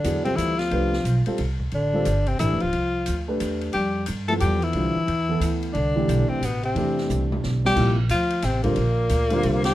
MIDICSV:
0, 0, Header, 1, 7, 480
1, 0, Start_track
1, 0, Tempo, 335570
1, 1026, Time_signature, 3, 2, 24, 8
1, 13934, End_track
2, 0, Start_track
2, 0, Title_t, "Tenor saxophone"
2, 0, Program_c, 0, 66
2, 0, Note_on_c, 0, 62, 71
2, 338, Note_off_c, 0, 62, 0
2, 351, Note_on_c, 0, 60, 76
2, 514, Note_on_c, 0, 64, 83
2, 535, Note_off_c, 0, 60, 0
2, 848, Note_on_c, 0, 65, 85
2, 869, Note_off_c, 0, 64, 0
2, 1809, Note_off_c, 0, 65, 0
2, 2499, Note_on_c, 0, 62, 77
2, 3258, Note_on_c, 0, 60, 76
2, 3279, Note_off_c, 0, 62, 0
2, 3419, Note_off_c, 0, 60, 0
2, 3428, Note_on_c, 0, 64, 86
2, 3741, Note_on_c, 0, 65, 90
2, 3762, Note_off_c, 0, 64, 0
2, 4697, Note_off_c, 0, 65, 0
2, 5340, Note_on_c, 0, 67, 80
2, 5792, Note_off_c, 0, 67, 0
2, 6126, Note_on_c, 0, 69, 91
2, 6207, Note_off_c, 0, 69, 0
2, 6305, Note_on_c, 0, 67, 83
2, 6628, Note_on_c, 0, 64, 93
2, 6649, Note_off_c, 0, 67, 0
2, 8061, Note_off_c, 0, 64, 0
2, 8199, Note_on_c, 0, 62, 79
2, 8999, Note_on_c, 0, 60, 80
2, 9020, Note_off_c, 0, 62, 0
2, 9227, Note_on_c, 0, 59, 76
2, 9248, Note_off_c, 0, 60, 0
2, 9512, Note_off_c, 0, 59, 0
2, 9517, Note_on_c, 0, 60, 72
2, 10408, Note_off_c, 0, 60, 0
2, 10963, Note_on_c, 0, 67, 89
2, 11395, Note_off_c, 0, 67, 0
2, 11599, Note_on_c, 0, 65, 94
2, 12084, Note_on_c, 0, 60, 85
2, 12105, Note_off_c, 0, 65, 0
2, 12345, Note_off_c, 0, 60, 0
2, 12353, Note_on_c, 0, 58, 94
2, 13744, Note_off_c, 0, 58, 0
2, 13805, Note_on_c, 0, 67, 100
2, 13934, Note_off_c, 0, 67, 0
2, 13934, End_track
3, 0, Start_track
3, 0, Title_t, "Grand piano"
3, 0, Program_c, 1, 0
3, 55, Note_on_c, 1, 54, 51
3, 68, Note_on_c, 1, 59, 51
3, 68, Note_on_c, 1, 64, 49
3, 82, Note_on_c, 1, 68, 59
3, 333, Note_off_c, 1, 54, 0
3, 339, Note_off_c, 1, 59, 0
3, 339, Note_off_c, 1, 64, 0
3, 346, Note_off_c, 1, 68, 0
3, 361, Note_on_c, 1, 55, 52
3, 369, Note_on_c, 1, 60, 47
3, 378, Note_on_c, 1, 65, 47
3, 387, Note_on_c, 1, 69, 55
3, 784, Note_off_c, 1, 55, 0
3, 788, Note_off_c, 1, 60, 0
3, 793, Note_off_c, 1, 65, 0
3, 797, Note_off_c, 1, 69, 0
3, 1017, Note_on_c, 1, 57, 53
3, 1024, Note_on_c, 1, 62, 49
3, 1043, Note_on_c, 1, 67, 49
3, 1046, Note_on_c, 1, 71, 65
3, 1294, Note_off_c, 1, 57, 0
3, 1298, Note_off_c, 1, 62, 0
3, 1308, Note_off_c, 1, 67, 0
3, 1309, Note_off_c, 1, 71, 0
3, 1814, Note_on_c, 1, 55, 58
3, 1817, Note_on_c, 1, 60, 55
3, 1824, Note_on_c, 1, 65, 58
3, 1832, Note_on_c, 1, 69, 67
3, 1972, Note_off_c, 1, 55, 0
3, 1973, Note_off_c, 1, 60, 0
3, 1977, Note_off_c, 1, 65, 0
3, 1980, Note_off_c, 1, 69, 0
3, 2767, Note_on_c, 1, 55, 67
3, 2782, Note_on_c, 1, 60, 64
3, 2789, Note_on_c, 1, 65, 58
3, 2799, Note_on_c, 1, 69, 71
3, 2929, Note_off_c, 1, 55, 0
3, 2936, Note_off_c, 1, 60, 0
3, 2939, Note_off_c, 1, 65, 0
3, 2944, Note_off_c, 1, 69, 0
3, 3412, Note_on_c, 1, 57, 51
3, 3423, Note_on_c, 1, 62, 45
3, 3433, Note_on_c, 1, 67, 43
3, 3448, Note_on_c, 1, 71, 54
3, 3693, Note_off_c, 1, 57, 0
3, 3699, Note_off_c, 1, 62, 0
3, 3704, Note_off_c, 1, 67, 0
3, 3711, Note_off_c, 1, 71, 0
3, 4691, Note_on_c, 1, 57, 58
3, 4695, Note_on_c, 1, 62, 50
3, 4703, Note_on_c, 1, 67, 49
3, 4705, Note_on_c, 1, 71, 61
3, 5314, Note_off_c, 1, 57, 0
3, 5316, Note_off_c, 1, 62, 0
3, 5320, Note_off_c, 1, 67, 0
3, 5321, Note_off_c, 1, 71, 0
3, 6125, Note_on_c, 1, 53, 60
3, 6143, Note_on_c, 1, 59, 54
3, 6149, Note_on_c, 1, 64, 53
3, 6161, Note_on_c, 1, 69, 67
3, 6751, Note_off_c, 1, 53, 0
3, 6761, Note_off_c, 1, 59, 0
3, 6763, Note_off_c, 1, 64, 0
3, 6769, Note_off_c, 1, 69, 0
3, 6795, Note_on_c, 1, 50, 46
3, 6798, Note_on_c, 1, 55, 45
3, 6810, Note_on_c, 1, 60, 40
3, 6815, Note_on_c, 1, 65, 53
3, 7066, Note_off_c, 1, 50, 0
3, 7067, Note_off_c, 1, 55, 0
3, 7073, Note_off_c, 1, 60, 0
3, 7075, Note_off_c, 1, 65, 0
3, 7568, Note_on_c, 1, 52, 63
3, 7575, Note_on_c, 1, 59, 56
3, 7579, Note_on_c, 1, 64, 60
3, 7602, Note_on_c, 1, 69, 72
3, 8193, Note_off_c, 1, 52, 0
3, 8196, Note_off_c, 1, 59, 0
3, 8198, Note_off_c, 1, 64, 0
3, 8210, Note_off_c, 1, 69, 0
3, 8521, Note_on_c, 1, 52, 62
3, 8527, Note_on_c, 1, 57, 58
3, 8536, Note_on_c, 1, 62, 53
3, 8537, Note_on_c, 1, 67, 66
3, 9149, Note_off_c, 1, 52, 0
3, 9152, Note_off_c, 1, 57, 0
3, 9157, Note_off_c, 1, 62, 0
3, 9157, Note_off_c, 1, 67, 0
3, 9662, Note_on_c, 1, 52, 57
3, 9678, Note_on_c, 1, 57, 52
3, 9685, Note_on_c, 1, 67, 65
3, 9686, Note_on_c, 1, 62, 57
3, 11000, Note_off_c, 1, 52, 0
3, 11008, Note_off_c, 1, 57, 0
3, 11011, Note_off_c, 1, 62, 0
3, 11011, Note_off_c, 1, 67, 0
3, 11087, Note_on_c, 1, 53, 59
3, 11090, Note_on_c, 1, 48, 62
3, 11105, Note_on_c, 1, 58, 59
3, 11115, Note_on_c, 1, 64, 67
3, 11371, Note_off_c, 1, 53, 0
3, 11372, Note_off_c, 1, 48, 0
3, 11380, Note_off_c, 1, 58, 0
3, 11385, Note_off_c, 1, 64, 0
3, 12350, Note_on_c, 1, 50, 67
3, 12358, Note_on_c, 1, 55, 68
3, 12366, Note_on_c, 1, 60, 64
3, 12369, Note_on_c, 1, 65, 75
3, 12520, Note_off_c, 1, 50, 0
3, 12524, Note_off_c, 1, 55, 0
3, 12528, Note_off_c, 1, 60, 0
3, 12530, Note_off_c, 1, 65, 0
3, 13309, Note_on_c, 1, 50, 75
3, 13319, Note_on_c, 1, 55, 68
3, 13331, Note_on_c, 1, 60, 64
3, 13341, Note_on_c, 1, 65, 79
3, 13934, Note_off_c, 1, 50, 0
3, 13934, Note_off_c, 1, 55, 0
3, 13934, Note_off_c, 1, 60, 0
3, 13934, Note_off_c, 1, 65, 0
3, 13934, End_track
4, 0, Start_track
4, 0, Title_t, "Bass clarinet"
4, 0, Program_c, 2, 71
4, 0, Note_on_c, 2, 50, 67
4, 313, Note_off_c, 2, 50, 0
4, 332, Note_on_c, 2, 48, 64
4, 505, Note_on_c, 2, 52, 75
4, 526, Note_off_c, 2, 48, 0
4, 801, Note_on_c, 2, 53, 78
4, 822, Note_off_c, 2, 52, 0
4, 1786, Note_off_c, 2, 53, 0
4, 2467, Note_on_c, 2, 50, 74
4, 3237, Note_on_c, 2, 48, 62
4, 3258, Note_off_c, 2, 50, 0
4, 3406, Note_off_c, 2, 48, 0
4, 3414, Note_on_c, 2, 52, 72
4, 3717, Note_on_c, 2, 53, 68
4, 3739, Note_off_c, 2, 52, 0
4, 4686, Note_off_c, 2, 53, 0
4, 5366, Note_on_c, 2, 55, 80
4, 5805, Note_off_c, 2, 55, 0
4, 6138, Note_on_c, 2, 57, 76
4, 6217, Note_off_c, 2, 57, 0
4, 6303, Note_on_c, 2, 55, 73
4, 6584, Note_on_c, 2, 52, 73
4, 6606, Note_off_c, 2, 55, 0
4, 8039, Note_off_c, 2, 52, 0
4, 8209, Note_on_c, 2, 50, 72
4, 8977, Note_on_c, 2, 48, 64
4, 8999, Note_off_c, 2, 50, 0
4, 9170, Note_on_c, 2, 47, 65
4, 9192, Note_off_c, 2, 48, 0
4, 9468, Note_off_c, 2, 47, 0
4, 9476, Note_on_c, 2, 48, 64
4, 10387, Note_off_c, 2, 48, 0
4, 10944, Note_on_c, 2, 55, 76
4, 11385, Note_off_c, 2, 55, 0
4, 11585, Note_on_c, 2, 53, 77
4, 12066, Note_on_c, 2, 48, 75
4, 12087, Note_off_c, 2, 53, 0
4, 12370, Note_off_c, 2, 48, 0
4, 12388, Note_on_c, 2, 46, 78
4, 13761, Note_off_c, 2, 46, 0
4, 13846, Note_on_c, 2, 55, 83
4, 13934, Note_off_c, 2, 55, 0
4, 13934, End_track
5, 0, Start_track
5, 0, Title_t, "Upright bass"
5, 0, Program_c, 3, 32
5, 63, Note_on_c, 3, 40, 77
5, 520, Note_off_c, 3, 40, 0
5, 529, Note_on_c, 3, 38, 77
5, 1003, Note_off_c, 3, 38, 0
5, 1017, Note_on_c, 3, 36, 64
5, 1479, Note_off_c, 3, 36, 0
5, 1487, Note_on_c, 3, 35, 80
5, 1778, Note_off_c, 3, 35, 0
5, 1986, Note_on_c, 3, 36, 75
5, 2453, Note_off_c, 3, 36, 0
5, 2465, Note_on_c, 3, 33, 67
5, 2932, Note_off_c, 3, 33, 0
5, 2945, Note_on_c, 3, 31, 79
5, 3413, Note_off_c, 3, 31, 0
5, 3437, Note_on_c, 3, 33, 82
5, 3604, Note_off_c, 3, 33, 0
5, 3604, Note_on_c, 3, 29, 47
5, 3752, Note_off_c, 3, 29, 0
5, 3761, Note_on_c, 3, 26, 58
5, 3895, Note_off_c, 3, 26, 0
5, 3903, Note_on_c, 3, 36, 65
5, 4372, Note_off_c, 3, 36, 0
5, 4407, Note_on_c, 3, 38, 78
5, 4864, Note_off_c, 3, 38, 0
5, 4873, Note_on_c, 3, 40, 71
5, 5338, Note_off_c, 3, 40, 0
5, 5356, Note_on_c, 3, 41, 66
5, 5819, Note_off_c, 3, 41, 0
5, 5840, Note_on_c, 3, 43, 77
5, 6301, Note_off_c, 3, 43, 0
5, 6309, Note_on_c, 3, 40, 83
5, 6765, Note_off_c, 3, 40, 0
5, 6773, Note_on_c, 3, 36, 66
5, 7063, Note_off_c, 3, 36, 0
5, 7261, Note_on_c, 3, 40, 83
5, 7718, Note_off_c, 3, 40, 0
5, 7726, Note_on_c, 3, 38, 77
5, 8204, Note_off_c, 3, 38, 0
5, 8226, Note_on_c, 3, 36, 77
5, 8694, Note_off_c, 3, 36, 0
5, 8703, Note_on_c, 3, 35, 89
5, 8988, Note_off_c, 3, 35, 0
5, 9174, Note_on_c, 3, 33, 72
5, 9648, Note_off_c, 3, 33, 0
5, 9654, Note_on_c, 3, 40, 72
5, 10128, Note_off_c, 3, 40, 0
5, 10151, Note_on_c, 3, 36, 80
5, 10617, Note_off_c, 3, 36, 0
5, 10638, Note_on_c, 3, 35, 73
5, 11091, Note_off_c, 3, 35, 0
5, 11100, Note_on_c, 3, 34, 79
5, 11570, Note_off_c, 3, 34, 0
5, 11577, Note_on_c, 3, 38, 81
5, 12049, Note_off_c, 3, 38, 0
5, 12056, Note_on_c, 3, 33, 80
5, 12528, Note_off_c, 3, 33, 0
5, 12545, Note_on_c, 3, 34, 73
5, 13005, Note_off_c, 3, 34, 0
5, 13014, Note_on_c, 3, 38, 89
5, 13486, Note_off_c, 3, 38, 0
5, 13501, Note_on_c, 3, 36, 86
5, 13934, Note_off_c, 3, 36, 0
5, 13934, End_track
6, 0, Start_track
6, 0, Title_t, "Muted upright bass strokes"
6, 1815, Note_on_c, 9, 29, 38
6, 1958, Note_off_c, 9, 29, 0
6, 7087, Note_on_c, 9, 29, 36
6, 7231, Note_off_c, 9, 29, 0
6, 9001, Note_on_c, 9, 29, 37
6, 9144, Note_off_c, 9, 29, 0
6, 13934, End_track
7, 0, Start_track
7, 0, Title_t, "Drums"
7, 62, Note_on_c, 9, 44, 48
7, 62, Note_on_c, 9, 51, 59
7, 205, Note_off_c, 9, 44, 0
7, 205, Note_off_c, 9, 51, 0
7, 362, Note_on_c, 9, 51, 39
7, 505, Note_off_c, 9, 51, 0
7, 547, Note_on_c, 9, 44, 53
7, 547, Note_on_c, 9, 51, 55
7, 690, Note_off_c, 9, 44, 0
7, 690, Note_off_c, 9, 51, 0
7, 843, Note_on_c, 9, 51, 35
7, 850, Note_on_c, 9, 38, 38
7, 986, Note_off_c, 9, 51, 0
7, 993, Note_off_c, 9, 38, 0
7, 1020, Note_on_c, 9, 51, 41
7, 1163, Note_off_c, 9, 51, 0
7, 1332, Note_on_c, 9, 38, 47
7, 1475, Note_off_c, 9, 38, 0
7, 1502, Note_on_c, 9, 44, 51
7, 1502, Note_on_c, 9, 51, 52
7, 1645, Note_off_c, 9, 44, 0
7, 1645, Note_off_c, 9, 51, 0
7, 1799, Note_on_c, 9, 51, 43
7, 1942, Note_off_c, 9, 51, 0
7, 1973, Note_on_c, 9, 51, 55
7, 2116, Note_off_c, 9, 51, 0
7, 2286, Note_on_c, 9, 36, 43
7, 2429, Note_off_c, 9, 36, 0
7, 2453, Note_on_c, 9, 51, 40
7, 2596, Note_off_c, 9, 51, 0
7, 2935, Note_on_c, 9, 44, 58
7, 2935, Note_on_c, 9, 51, 51
7, 3078, Note_off_c, 9, 44, 0
7, 3078, Note_off_c, 9, 51, 0
7, 3240, Note_on_c, 9, 51, 41
7, 3383, Note_off_c, 9, 51, 0
7, 3419, Note_on_c, 9, 44, 51
7, 3419, Note_on_c, 9, 51, 52
7, 3562, Note_off_c, 9, 44, 0
7, 3562, Note_off_c, 9, 51, 0
7, 3722, Note_on_c, 9, 51, 33
7, 3866, Note_off_c, 9, 51, 0
7, 3900, Note_on_c, 9, 51, 43
7, 4043, Note_off_c, 9, 51, 0
7, 4374, Note_on_c, 9, 44, 46
7, 4374, Note_on_c, 9, 51, 53
7, 4517, Note_off_c, 9, 44, 0
7, 4517, Note_off_c, 9, 51, 0
7, 4865, Note_on_c, 9, 44, 53
7, 4865, Note_on_c, 9, 51, 56
7, 5008, Note_off_c, 9, 44, 0
7, 5008, Note_off_c, 9, 51, 0
7, 5168, Note_on_c, 9, 51, 35
7, 5311, Note_off_c, 9, 51, 0
7, 5331, Note_on_c, 9, 51, 48
7, 5474, Note_off_c, 9, 51, 0
7, 5807, Note_on_c, 9, 44, 51
7, 5807, Note_on_c, 9, 51, 57
7, 5950, Note_off_c, 9, 44, 0
7, 5950, Note_off_c, 9, 51, 0
7, 6127, Note_on_c, 9, 51, 38
7, 6270, Note_off_c, 9, 51, 0
7, 6298, Note_on_c, 9, 44, 53
7, 6298, Note_on_c, 9, 51, 60
7, 6442, Note_off_c, 9, 44, 0
7, 6442, Note_off_c, 9, 51, 0
7, 6610, Note_on_c, 9, 51, 38
7, 6753, Note_off_c, 9, 51, 0
7, 6767, Note_on_c, 9, 51, 44
7, 6910, Note_off_c, 9, 51, 0
7, 7267, Note_on_c, 9, 51, 45
7, 7410, Note_off_c, 9, 51, 0
7, 7744, Note_on_c, 9, 44, 53
7, 7744, Note_on_c, 9, 51, 56
7, 7887, Note_off_c, 9, 44, 0
7, 7887, Note_off_c, 9, 51, 0
7, 8047, Note_on_c, 9, 51, 35
7, 8190, Note_off_c, 9, 51, 0
7, 8220, Note_on_c, 9, 51, 42
7, 8363, Note_off_c, 9, 51, 0
7, 8710, Note_on_c, 9, 44, 44
7, 8710, Note_on_c, 9, 51, 54
7, 8853, Note_off_c, 9, 44, 0
7, 8853, Note_off_c, 9, 51, 0
7, 9192, Note_on_c, 9, 44, 56
7, 9192, Note_on_c, 9, 51, 61
7, 9335, Note_off_c, 9, 44, 0
7, 9335, Note_off_c, 9, 51, 0
7, 9488, Note_on_c, 9, 51, 34
7, 9631, Note_off_c, 9, 51, 0
7, 9668, Note_on_c, 9, 51, 45
7, 9811, Note_off_c, 9, 51, 0
7, 9984, Note_on_c, 9, 38, 33
7, 10127, Note_off_c, 9, 38, 0
7, 10149, Note_on_c, 9, 44, 45
7, 10156, Note_on_c, 9, 47, 37
7, 10292, Note_off_c, 9, 44, 0
7, 10299, Note_off_c, 9, 47, 0
7, 10472, Note_on_c, 9, 47, 58
7, 10615, Note_off_c, 9, 47, 0
7, 10632, Note_on_c, 9, 38, 51
7, 10776, Note_off_c, 9, 38, 0
7, 10946, Note_on_c, 9, 38, 69
7, 11089, Note_off_c, 9, 38, 0
7, 11101, Note_on_c, 9, 36, 65
7, 11107, Note_on_c, 9, 49, 63
7, 11245, Note_off_c, 9, 36, 0
7, 11250, Note_off_c, 9, 49, 0
7, 11576, Note_on_c, 9, 44, 57
7, 11576, Note_on_c, 9, 51, 60
7, 11719, Note_off_c, 9, 44, 0
7, 11719, Note_off_c, 9, 51, 0
7, 11879, Note_on_c, 9, 51, 46
7, 12022, Note_off_c, 9, 51, 0
7, 12049, Note_on_c, 9, 44, 56
7, 12049, Note_on_c, 9, 51, 65
7, 12056, Note_on_c, 9, 38, 35
7, 12192, Note_off_c, 9, 44, 0
7, 12192, Note_off_c, 9, 51, 0
7, 12199, Note_off_c, 9, 38, 0
7, 12353, Note_on_c, 9, 51, 40
7, 12361, Note_on_c, 9, 36, 44
7, 12496, Note_off_c, 9, 51, 0
7, 12504, Note_off_c, 9, 36, 0
7, 12526, Note_on_c, 9, 51, 50
7, 12669, Note_off_c, 9, 51, 0
7, 13008, Note_on_c, 9, 44, 52
7, 13008, Note_on_c, 9, 51, 62
7, 13151, Note_off_c, 9, 44, 0
7, 13151, Note_off_c, 9, 51, 0
7, 13306, Note_on_c, 9, 51, 50
7, 13449, Note_off_c, 9, 51, 0
7, 13492, Note_on_c, 9, 51, 59
7, 13635, Note_off_c, 9, 51, 0
7, 13788, Note_on_c, 9, 51, 58
7, 13795, Note_on_c, 9, 38, 72
7, 13931, Note_off_c, 9, 51, 0
7, 13934, Note_off_c, 9, 38, 0
7, 13934, End_track
0, 0, End_of_file